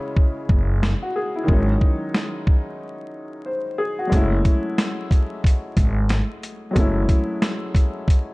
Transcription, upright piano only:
Already playing: C#3 E3 G#3 C#4 E4
1.03 F#4
1.16 G#4
1.36 E4
1.43 D#3 F#3
1.48 G#3 C#4
1.53 D#4
3.46 C5
3.78 G#4
3.99 F#4
4.07 F#3 G#3
4.12 A3 C#4
4.16 E4
6.71 F#3 G#3
6.75 A3 C#4
6.80 E4

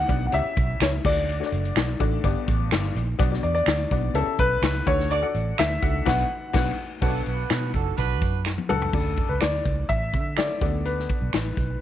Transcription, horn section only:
5.10 F#4 A4 D5
7.01 D4 F#4 A4
7.26 D4 F#4 B4
7.74 D4 F#4 A4
7.97 D4 F#4 B4

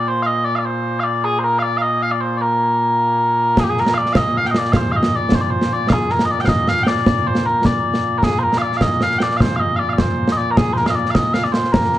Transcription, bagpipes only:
Already playing: A#2 A#3
0.08 C5
0.23 D#5 F5
0.45 D5
0.55 D5 F5
0.65 C5
1.00 D5 F5
1.24 G#4
1.39 C5
1.44 A#4
1.59 D5 F5
1.77 F5
1.82 D#5
2.02 F5
2.11 D5
2.21 C5
2.38 A#4 D5
3.60 G#4
3.64 G4
3.70 G#4
3.80 A#4
3.94 D5 F5
4.13 D#5 F5
4.37 F5
4.46 G5
4.50 D#5
4.58 D5
4.72 F5
4.77 C5
4.92 F5
4.96 D#5
5.16 D5
5.35 C5
5.41 D5
5.50 C5
5.73 D5
5.89 G#4 F5
6.11 A#4
6.25 D#5
6.31 D5
6.41 G5
6.45 D#5 F5
6.69 F5
6.83 G5
6.87 D5
7.27 C5
7.46 A#4
7.65 D5
8.18 A#4
8.24 G#4
8.39 C5
8.43 A#4
8.58 F5
8.62 D5
8.77 F5
8.82 D#5
9.03 F5
9.18 G5
9.22 D5
9.37 C5 F5
9.56 D#5 F5
9.76 D5 F5
9.89 D5 F5
9.98 C5
10.32 D#5
10.37 D5
10.51 A#4
10.57 G#4
10.73 A#4 C5
10.86 D#5 F5
10.95 D5
11.11 D#5 F5
11.34 F5
11.44 D5
11.52 C5
11.72 A#4

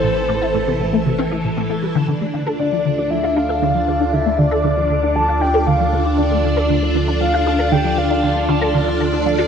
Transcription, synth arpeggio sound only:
0.03 A2
0.16 E3
0.29 A2
0.42 E4
0.54 A2
0.67 C3
0.80 A2
0.93 A3
1.06 C3
1.18 C4
1.31 E3
1.44 A2
1.57 A2
1.70 A3
1.83 G3
1.95 D3
2.08 D3
2.21 A3
2.34 D3
2.47 A4
2.59 D3
2.72 F3
2.85 D3
2.98 D4
3.11 F3
3.23 F4
3.36 D4
3.49 A4
3.62 D3
3.75 F3
3.88 D3
4.00 D4
4.13 D3
4.26 A3
4.38 D3
4.51 A4
4.64 D3
4.77 F3
4.90 D3
5.03 D4
5.16 F3
5.28 F4
5.41 D4
5.54 A4
5.67 D3
5.80 F3
5.93 D3
6.05 D4
6.18 D3
6.31 A3
6.44 D3
6.57 A4
6.70 D3
6.82 F3
6.95 D3
7.08 D4
7.21 F3
7.34 F4
7.46 D4
7.59 A4
7.72 D3
7.85 F3
7.97 D3
8.10 D4
8.23 D3
8.36 A3
8.49 D3
8.61 A4
8.74 D3
8.87 F3
9.00 D3
9.13 D4
9.26 F3
9.38 F4

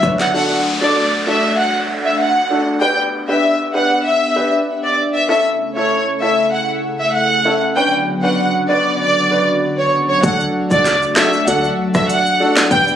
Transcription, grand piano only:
0.03 D4 B4 C#5
0.34 D4 F#4 A4
0.81 D4 F#4 A4
1.27 D4 F#4 A4
2.50 D4 F#4 A4
2.81 D4 G4 B4
3.28 D4 G4 B4
3.74 D4 G4 B4
4.36 D4 G4 B4
5.29 C#4 E4 A4
5.76 C#4 E4 A4
6.22 C#4 E4 A4
7.45 C#4 E4 A4
7.76 C#4 D4 B4
8.23 C#4 D4 B4
8.69 C#4 D4 B4
9.31 C#4 D4 B4
10.23 D4 F#4 A4
10.71 D4 F#4 A4
11.16 D4 F#4 A4
11.47 D4 F#4 A4
11.95 D4 F#4 A4
12.40 D4 F#4 A4
12.71 D4 G4 B4

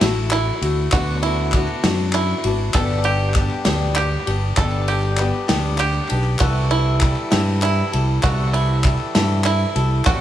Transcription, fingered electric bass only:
0.01 A1
0.61 D2
0.93 D2
1.83 F#2
2.44 G#1
2.74 G1
3.66 D2
4.27 G1
4.57 G1
5.50 D2
6.11 B1
6.41 C2
7.33 G2
7.94 C2
8.23 C2
9.15 G2
9.75 C2
10.07 A1

